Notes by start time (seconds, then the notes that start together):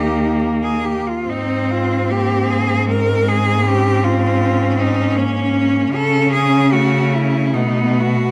Already playing: D#2 A#3 D#4 G4
0.63 G#4
0.85 G4
1.08 F4
1.26 G#2 C4 D#4
1.71 F4
2.10 A#3 G4
2.50 G#4
2.86 G#3 A#4
3.29 G#4
3.65 C4 C#4 G4
4.04 F4
4.80 D#4
5.15 A#3 C#4
5.93 C#3 C#4 A4
6.34 G#4
6.72 A3 F#4
7.14 E4
7.54 B2 A3 B3 D#4
8.00 F#4